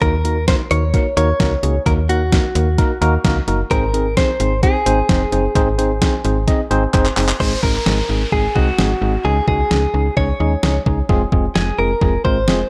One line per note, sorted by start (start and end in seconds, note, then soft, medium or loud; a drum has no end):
0.01 0.56 D#2 loud
0.01 0.14 A#3 loud
0.01 0.14 D#4 medium
0.01 0.14 F#4 medium
0.01 0.14 A#4 loud
0.01 0.47 A#4 loud
0.01 kick loud
0.01 closed hi-hat medium
0.25 0.37 A#3 medium
0.25 0.37 D#4 medium
0.25 0.37 F#4 medium
0.25 0.37 A#4 medium
0.25 closed hi-hat medium
0.48 0.60 A#3 medium
0.48 0.60 D#4 medium
0.48 0.60 F#4 medium
0.48 0.60 A#4 medium
0.48 0.54 C5 loud
0.48 kick loud
0.48 snare loud
0.48 closed hi-hat medium
0.71 0.95 D#2 loud
0.71 0.83 A#3 medium
0.71 0.83 D#4 medium
0.71 0.83 F#4 medium
0.71 0.83 A#4 medium
0.71 1.16 C#5 loud
0.71 closed hi-hat medium
0.94 1.06 A#3 medium
0.94 1.06 D#4 medium
0.94 1.06 F#4 medium
0.94 1.06 A#4 medium
0.94 kick loud
0.94 closed hi-hat medium
1.17 1.33 D#2 loud
1.17 1.29 A#3 loud
1.17 1.29 D#4 medium
1.17 1.29 F#4 medium
1.17 1.29 A#4 loud
1.17 1.82 C#5 loud
1.17 closed hi-hat medium
1.40 1.56 C#2 medium
1.40 1.52 A#3 medium
1.40 1.52 D#4 medium
1.40 1.52 F#4 medium
1.40 1.52 A#4 loud
1.40 kick loud
1.40 snare loud
1.40 closed hi-hat medium
1.63 1.79 C#2 medium
1.63 1.75 A#3 medium
1.63 1.75 D#4 medium
1.63 1.75 F#4 medium
1.63 1.75 G#4 medium
1.63 closed hi-hat medium
1.86 2.41 D#2 loud
1.86 1.98 A#3 medium
1.86 1.98 D#4 medium
1.86 1.98 F#4 medium
1.86 1.98 A#4 loud
1.86 1.92 A#4 loud
1.86 kick loud
1.86 closed hi-hat medium
2.09 2.21 A#3 medium
2.09 2.21 D#4 medium
2.09 2.21 F#4 medium
2.09 2.98 F#4 medium
2.09 2.21 A#4 medium
2.09 closed hi-hat medium
2.32 2.44 A#3 medium
2.32 2.44 D#4 medium
2.32 2.44 F#4 medium
2.32 2.44 A#4 medium
2.32 kick loud
2.32 snare loud
2.32 closed hi-hat medium
2.55 2.80 D#2 loud
2.55 2.67 A#3 medium
2.55 2.67 D#4 medium
2.55 2.67 F#4 medium
2.55 2.67 A#4 medium
2.55 closed hi-hat medium
2.78 2.91 A#3 medium
2.78 2.90 D#4 medium
2.78 2.90 F#4 medium
2.78 2.90 A#4 loud
2.78 kick loud
2.78 closed hi-hat medium
3.02 3.18 D#2 loud
3.02 3.14 A#3 loud
3.02 3.14 D#4 loud
3.02 3.14 F#4 loud
3.02 3.14 A#4 loud
3.02 closed hi-hat medium
3.25 3.41 C#2 loud
3.25 3.37 A#3 loud
3.25 3.37 D#4 loud
3.25 3.37 F#4 loud
3.25 3.37 A#4 loud
3.25 kick loud
3.25 snare loud
3.25 closed hi-hat medium
3.48 3.64 F#1 medium
3.48 3.60 A#3 medium
3.48 3.60 D#4 medium
3.48 3.60 F#4 medium
3.48 3.60 A#4 loud
3.48 closed hi-hat medium
3.71 4.26 G#1 loud
3.71 3.83 C4 medium
3.71 3.83 D#4 medium
3.71 3.83 G#4 medium
3.71 4.17 A#4 loud
3.71 3.83 C5 loud
3.71 kick loud
3.71 closed hi-hat medium
3.94 4.06 C4 medium
3.94 4.06 D#4 medium
3.94 4.06 G#4 medium
3.94 4.06 A#4 medium
3.94 closed hi-hat medium
4.17 4.29 C4 medium
4.17 4.29 D#4 medium
4.17 4.29 G#4 medium
4.17 4.29 C5 medium
4.17 4.63 C5 loud
4.17 kick loud
4.17 snare loud
4.17 closed hi-hat medium
4.40 4.64 G#1 medium
4.40 4.52 C4 medium
4.40 4.52 D#4 medium
4.40 4.52 G#4 medium
4.40 4.52 C5 medium
4.40 closed hi-hat medium
4.63 4.75 C4 medium
4.63 4.75 D#4 medium
4.63 4.75 G#4 medium
4.63 6.90 G#4 medium
4.63 4.75 C5 medium
4.63 kick loud
4.63 closed hi-hat medium
4.86 5.02 G#1 medium
4.86 4.98 C4 loud
4.86 4.98 D#4 medium
4.86 4.98 G#4 medium
4.86 4.98 C5 loud
4.86 closed hi-hat medium
5.09 5.25 F1 medium
5.09 5.21 C4 medium
5.09 5.21 D#4 medium
5.09 5.21 G#4 medium
5.09 5.21 C5 loud
5.09 kick loud
5.09 snare loud
5.09 closed hi-hat medium
5.32 5.49 F#1 medium
5.32 5.44 C4 medium
5.32 5.44 D#4 medium
5.32 5.44 G#4 medium
5.32 5.44 C5 loud
5.32 closed hi-hat medium
5.55 6.10 G#1 loud
5.55 5.67 C4 loud
5.55 5.67 D#4 loud
5.55 5.67 G#4 loud
5.55 5.67 C5 loud
5.55 kick loud
5.55 closed hi-hat medium
5.78 5.91 C4 medium
5.78 5.91 D#4 medium
5.78 5.91 G#4 medium
5.78 5.91 C5 loud
5.78 closed hi-hat medium
6.02 6.14 C4 medium
6.02 6.14 D#4 medium
6.02 6.14 G#4 medium
6.02 6.14 C5 loud
6.02 kick loud
6.02 snare loud
6.02 closed hi-hat medium
6.25 6.49 G#1 loud
6.25 6.37 C4 medium
6.25 6.37 D#4 medium
6.25 6.37 G#4 medium
6.25 6.37 C5 medium
6.25 closed hi-hat medium
6.48 6.60 C4 medium
6.48 6.60 D#4 medium
6.48 6.60 G#4 medium
6.48 6.60 D#5 loud
6.48 kick loud
6.48 closed hi-hat medium
6.71 6.87 G#1 loud
6.71 6.83 C4 loud
6.71 6.83 D#4 loud
6.71 6.83 G#4 loud
6.71 6.83 C5 loud
6.71 closed hi-hat medium
6.94 7.10 F#1 loud
6.94 7.06 C4 loud
6.94 7.06 D#4 loud
6.94 7.06 G#4 loud
6.94 7.06 C5 loud
6.94 kick loud
6.94 clap medium
6.94 closed hi-hat medium
7.05 clap medium
7.17 7.33 F#1 medium
7.17 7.29 C4 medium
7.17 7.29 D#4 medium
7.17 7.29 G#4 medium
7.17 7.29 C5 loud
7.17 clap medium
7.17 open hi-hat medium
7.29 clap medium
7.40 7.56 G#1 loud
7.40 7.52 G#3 medium
7.40 7.52 C4 medium
7.40 7.52 D#4 medium
7.40 7.52 G#4 loud
7.40 7.63 C5 medium
7.40 kick loud
7.40 crash medium
7.40 downlifter medium
7.63 7.79 G#1 loud
7.63 7.75 G#3 medium
7.63 7.75 C4 medium
7.63 7.75 D#4 medium
7.63 7.75 A#4 medium
7.63 8.32 A#4 medium
7.63 kick medium
7.86 8.02 G#1 loud
7.86 7.98 G#3 medium
7.86 7.98 C4 medium
7.86 7.98 D#4 medium
7.86 7.98 G#4 medium
7.86 snare loud
8.09 8.26 G#1 medium
8.09 8.21 G#3 medium
8.09 8.21 C4 medium
8.09 8.21 D#4 medium
8.09 8.21 G#4 medium
8.32 8.48 G#1 loud
8.32 8.44 G#3 medium
8.32 8.44 C4 medium
8.32 8.44 D#4 medium
8.32 8.44 G#4 medium
8.32 8.56 G#4 medium
8.32 kick medium
8.55 8.72 C2 medium
8.55 8.67 G#3 medium
8.55 8.67 C4 medium
8.55 8.67 D#4 medium
8.55 9.27 F#4 medium
8.55 8.67 G#4 loud
8.55 kick medium
8.79 8.95 G#1 loud
8.79 8.91 G#3 medium
8.79 8.91 C4 medium
8.79 8.91 D#4 medium
8.79 8.91 G#4 loud
8.79 snare loud
9.02 9.18 G#1 medium
9.02 9.14 G#3 medium
9.02 9.14 C4 medium
9.02 9.14 D#4 medium
9.02 9.14 G#4 medium
9.25 9.41 C#2 loud
9.25 9.37 G#3 medium
9.25 9.37 C#4 medium
9.25 9.37 D#4 medium
9.25 9.37 G#4 loud
9.25 9.47 G#4 medium
9.48 9.64 C#2 medium
9.48 9.60 G#3 medium
9.48 9.60 C#4 medium
9.48 9.60 D#4 medium
9.48 9.60 F#4 medium
9.48 10.17 G#4 medium
9.48 kick loud
9.71 9.87 C#2 loud
9.71 9.83 G#3 medium
9.71 9.83 C#4 medium
9.71 9.83 D#4 medium
9.71 9.83 G#4 medium
9.71 snare loud
9.94 10.10 C#2 medium
9.94 10.06 G#3 medium
9.94 10.06 C#4 medium
9.94 10.06 D#4 medium
9.94 10.06 G#4 medium
10.17 10.33 C#2 loud
10.17 10.29 G#3 medium
10.17 10.29 C#4 medium
10.17 10.29 D#4 medium
10.17 10.29 G#4 medium
10.17 10.82 C#5 medium
10.17 kick medium
10.40 10.56 D#2 medium
10.40 10.52 G#3 medium
10.40 10.52 C#4 medium
10.40 10.52 D#4 medium
10.40 10.52 G#4 loud
10.63 10.79 C#2 loud
10.63 10.75 G#3 medium
10.63 10.75 C#4 medium
10.63 10.75 D#4 medium
10.63 10.75 G#4 loud
10.63 snare loud
10.86 11.02 C#2 loud
10.86 10.98 G#3 medium
10.86 10.98 C#4 medium
10.86 10.98 D#4 medium
10.86 10.98 G#4 loud
10.86 kick loud
11.09 11.25 F1 loud
11.09 11.21 G#3 loud
11.09 11.21 C4 loud
11.09 11.21 F4 loud
11.09 11.21 G#4 loud
11.09 kick loud
11.32 11.48 F1 loud
11.32 11.44 G#3 medium
11.32 11.44 C4 medium
11.32 11.44 F4 medium
11.32 11.44 G#4 loud
11.32 kick loud
11.55 11.72 F1 loud
11.55 11.67 G#3 medium
11.55 11.67 C4 medium
11.55 11.67 F4 medium
11.55 11.67 G#4 medium
11.55 11.79 G#4 medium
11.55 snare loud
11.78 11.95 F1 medium
11.78 11.91 G#3 medium
11.78 11.91 C4 medium
11.78 11.91 F4 medium
11.78 11.91 G#4 medium
11.78 12.21 A#4 medium
12.01 12.18 F1 loud
12.01 12.14 G#3 medium
12.01 12.14 C4 medium
12.01 12.14 F4 medium
12.01 12.14 G#4 medium
12.01 kick medium
12.25 12.49 G#1 medium
12.25 12.37 G#3 loud
12.25 12.37 C4 medium
12.25 12.37 F4 medium
12.25 12.37 A#4 loud
12.25 12.69 C5 loud
12.25 kick medium
12.48 12.64 F1 loud
12.48 12.60 G#3 medium
12.48 12.60 C4 medium
12.48 12.60 F4 medium
12.48 12.60 G#4 loud
12.48 snare loud